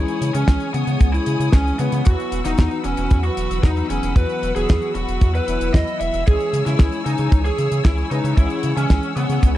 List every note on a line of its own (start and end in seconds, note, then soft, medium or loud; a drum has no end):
0.00 0.31 E3 medium
0.00 0.31 G#3 medium
0.00 0.31 C#4 medium
0.00 0.27 E4 medium
0.00 0.31 G#4 loud
0.00 2.02 C#5 medium
0.00 2.02 G#5 medium
0.00 2.04 D#6 medium
0.08 closed hi-hat soft
0.21 0.31 C#3 medium
0.21 closed hi-hat loud
0.34 0.44 C#3 medium
0.34 1.76 E3 medium
0.34 1.76 G#3 medium
0.34 1.76 C#4 medium
0.34 0.67 C#4 medium
0.34 1.76 G#4 medium
0.34 closed hi-hat medium
0.48 0.57 C#2 medium
0.48 kick loud
0.48 snare loud
0.48 closed hi-hat medium
0.60 closed hi-hat soft
0.74 0.84 C#3 medium
0.74 1.06 B3 medium
0.74 closed hi-hat medium
0.87 0.97 C#3 loud
0.87 closed hi-hat medium
1.00 1.19 C#2 medium
1.00 kick loud
1.00 closed hi-hat medium
1.13 1.45 E4 medium
1.13 closed hi-hat soft
1.26 1.36 C#3 medium
1.26 closed hi-hat loud
1.40 1.49 C#3 loud
1.40 closed hi-hat medium
1.52 1.72 C#2 medium
1.52 1.74 C#4 medium
1.52 kick loud
1.52 snare loud
1.52 closed hi-hat medium
1.67 closed hi-hat soft
1.79 1.89 C#3 medium
1.79 2.02 E3 medium
1.79 2.02 G#3 medium
1.79 2.01 B3 medium
1.79 2.02 C#4 medium
1.79 2.02 B4 loud
1.79 closed hi-hat medium
1.92 2.02 C#3 loud
1.92 closed hi-hat medium
2.05 2.16 E2 loud
2.05 2.42 E3 medium
2.05 2.42 F#3 medium
2.05 2.42 B3 medium
2.05 2.42 F#4 loud
2.05 2.38 F#4 medium
2.05 6.23 B4 medium
2.05 6.23 F#5 medium
2.05 9.58 E6 medium
2.05 kick loud
2.05 closed hi-hat medium
2.20 closed hi-hat soft
2.32 2.41 E1 medium
2.32 closed hi-hat loud
2.45 2.55 E1 medium
2.45 3.87 E3 medium
2.45 3.87 F#3 medium
2.45 3.87 B3 medium
2.45 2.77 D#4 medium
2.45 3.87 F#4 loud
2.45 snare soft
2.45 closed hi-hat medium
2.58 2.68 E2 medium
2.58 kick loud
2.58 snare loud
2.58 closed hi-hat medium
2.71 closed hi-hat soft
2.84 2.94 E1 medium
2.84 3.17 C#4 medium
2.84 closed hi-hat medium
2.97 3.07 E1 medium
2.97 closed hi-hat medium
3.11 3.30 E2 medium
3.11 kick loud
3.11 closed hi-hat medium
3.23 3.56 F#4 medium
3.23 closed hi-hat soft
3.37 3.47 E1 medium
3.37 closed hi-hat medium
3.50 3.60 E1 loud
3.50 closed hi-hat medium
3.63 3.82 E2 medium
3.63 3.85 D#4 medium
3.63 kick loud
3.63 snare loud
3.63 closed hi-hat medium
3.77 closed hi-hat soft
3.90 3.99 E1 medium
3.90 4.13 E3 medium
3.90 4.13 F#3 medium
3.90 4.13 B3 medium
3.90 4.11 C#4 medium
3.90 4.13 G#4 loud
3.90 closed hi-hat loud
4.03 4.13 E1 medium
4.03 closed hi-hat medium
4.16 4.25 E2 loud
4.16 4.52 E3 medium
4.16 4.52 F#3 medium
4.16 4.52 B3 medium
4.16 4.52 F#4 loud
4.16 4.48 B4 medium
4.16 kick loud
4.16 closed hi-hat medium
4.29 closed hi-hat soft
4.43 4.52 E1 medium
4.43 closed hi-hat medium
4.55 4.65 E1 medium
4.55 5.45 E3 medium
4.55 5.45 F#3 medium
4.55 5.45 B3 medium
4.55 5.45 F#4 medium
4.55 4.88 G#4 medium
4.55 closed hi-hat medium
4.69 4.79 E2 medium
4.69 kick loud
4.69 snare loud
4.69 closed hi-hat medium
4.82 closed hi-hat soft
4.95 5.05 E1 medium
4.95 5.27 F#4 medium
4.95 closed hi-hat medium
5.08 5.18 E1 medium
5.08 closed hi-hat medium
5.21 5.40 E2 loud
5.21 kick loud
5.21 closed hi-hat medium
5.35 5.67 B4 loud
5.35 closed hi-hat soft
5.48 5.57 E1 medium
5.48 6.24 E3 loud
5.48 6.24 F#3 medium
5.48 6.24 B3 medium
5.48 6.23 E4 loud
5.48 closed hi-hat medium
5.61 5.70 E1 loud
5.61 closed hi-hat medium
5.74 5.84 E2 medium
5.74 5.95 D#5 medium
5.74 kick loud
5.74 snare loud
5.74 closed hi-hat medium
5.87 closed hi-hat soft
6.00 6.10 E1 medium
6.00 6.22 E5 medium
6.00 closed hi-hat medium
6.14 6.23 E1 medium
6.14 closed hi-hat medium
6.27 6.37 C#2 loud
6.27 6.63 E3 medium
6.27 6.63 G#3 medium
6.27 6.63 C#4 medium
6.27 6.63 G#4 loud
6.27 6.59 G#4 medium
6.27 9.58 C#5 medium
6.27 8.35 G#5 medium
6.27 kick loud
6.27 closed hi-hat medium
6.40 closed hi-hat soft
6.53 6.63 C#3 medium
6.53 closed hi-hat loud
6.66 6.76 C#3 medium
6.66 8.08 E3 medium
6.66 8.08 G#3 medium
6.66 8.08 C#4 medium
6.66 6.98 E4 medium
6.66 8.08 G#4 loud
6.66 snare soft
6.66 closed hi-hat medium
6.79 6.89 C#2 medium
6.79 kick loud
6.79 snare loud
6.79 closed hi-hat medium
6.92 closed hi-hat soft
7.06 7.15 C#3 medium
7.06 7.38 D#4 medium
7.06 closed hi-hat medium
7.18 7.28 C#3 medium
7.18 closed hi-hat medium
7.32 7.51 C#2 medium
7.32 kick loud
7.32 closed hi-hat medium
7.45 7.77 G#4 medium
7.45 closed hi-hat soft
7.58 7.68 C#3 medium
7.58 closed hi-hat medium
7.72 7.81 C#3 loud
7.72 closed hi-hat medium
7.84 8.04 C#2 medium
7.84 8.06 E4 medium
7.84 kick loud
7.84 snare loud
7.84 closed hi-hat medium
7.98 closed hi-hat soft
8.11 8.20 C#3 medium
8.11 8.34 E3 medium
8.11 8.34 G#3 medium
8.11 8.34 C#4 medium
8.11 8.32 D#4 medium
8.11 8.34 B4 loud
8.11 closed hi-hat medium
8.24 8.34 C#3 loud
8.24 closed hi-hat medium
8.37 8.47 C#2 loud
8.37 8.74 E3 medium
8.37 8.74 G#3 medium
8.37 8.74 C#4 medium
8.37 8.69 E4 medium
8.37 8.74 G#4 loud
8.37 9.58 F#5 medium
8.37 kick loud
8.37 closed hi-hat medium
8.50 closed hi-hat soft
8.63 8.73 C#3 medium
8.63 closed hi-hat medium
8.77 8.86 C#3 medium
8.77 9.58 E3 medium
8.77 9.58 G#3 medium
8.77 9.58 C#4 medium
8.77 9.09 C#4 medium
8.77 9.58 G#4 medium
8.77 closed hi-hat medium
8.90 8.99 C#2 medium
8.90 kick loud
8.90 snare loud
8.90 closed hi-hat medium
9.03 closed hi-hat soft
9.16 9.26 C#3 medium
9.16 9.48 B3 medium
9.16 closed hi-hat medium
9.29 9.39 C#3 loud
9.29 closed hi-hat medium
9.43 9.58 C#2 medium
9.43 kick loud
9.43 closed hi-hat medium